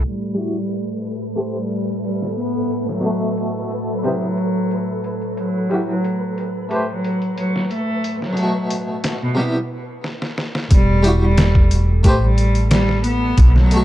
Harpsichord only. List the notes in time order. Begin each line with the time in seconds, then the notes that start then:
0.34 G3 E4
0.40 F#4
1.36 A3 G4 B4
1.40 C5
3.00 B2
3.05 A3
3.09 F#4
4.03 C3 G3 B3
4.08 E4
5.70 G3 E4
5.74 F#4
6.69 A3 G4 B4
6.74 C5
8.33 B2
8.38 A3
8.43 F#4
9.35 C3 G3 B3
9.40 E4
11.03 G3 E4
11.08 F#4
12.03 A3 G4 B4
12.08 C5
13.66 B2
13.72 A3
13.76 F#4